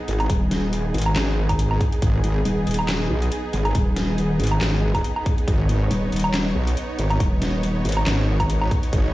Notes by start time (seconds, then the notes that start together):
Already playing: B3 D#4 G#4
0.08 G#1, closed hi-hat
0.20 closed hi-hat, low woodblock
0.30 D#1, kick, closed hi-hat
0.51 snare, closed hi-hat
0.73 closed hi-hat
0.94 G#1, closed hi-hat
0.98 closed hi-hat
1.02 closed hi-hat
1.06 low woodblock
1.16 G#1, snare, clap, closed hi-hat
1.49 kick, closed hi-hat, low woodblock
1.59 closed hi-hat
1.71 low woodblock
1.81 kick, closed hi-hat
1.92 closed hi-hat
2.02 G#1, kick, closed hi-hat
2.24 G#1, closed hi-hat
2.45 D#1, closed hi-hat
2.67 D#1, closed hi-hat
2.71 closed hi-hat
2.74 closed hi-hat
2.79 low woodblock
2.89 snare, clap, closed hi-hat
3.10 B1
3.22 closed hi-hat
3.32 closed hi-hat
3.53 G#1, closed hi-hat
3.65 closed hi-hat, low woodblock
3.75 D#1, kick, closed hi-hat
3.96 snare, closed hi-hat
4.18 closed hi-hat
4.40 G#1, closed hi-hat
4.44 closed hi-hat
4.47 closed hi-hat
4.52 low woodblock
4.61 G#1, snare, clap, closed hi-hat
4.95 kick, closed hi-hat, low woodblock
5.04 closed hi-hat
5.16 low woodblock
5.26 kick, closed hi-hat
5.38 closed hi-hat
5.48 G#1 C#5, kick, closed hi-hat
5.69 G#1, closed hi-hat
5.91 D#1, closed hi-hat
6.12 D#1, closed hi-hat
6.16 closed hi-hat
6.19 closed hi-hat
6.24 low woodblock
6.34 snare, clap, closed hi-hat
6.56 B1
6.67 closed hi-hat
6.77 closed hi-hat
6.99 G#1, closed hi-hat
7.10 closed hi-hat, low woodblock
7.20 D#1, kick, closed hi-hat
7.42 snare, closed hi-hat
7.63 closed hi-hat
7.85 G#1, closed hi-hat
7.89 closed hi-hat
7.92 closed hi-hat
7.97 low woodblock
8.07 G#1, snare, clap, closed hi-hat
8.40 kick, closed hi-hat, low woodblock
8.50 closed hi-hat
8.61 low woodblock
8.71 kick, closed hi-hat
8.83 closed hi-hat
8.93 G#1, kick, closed hi-hat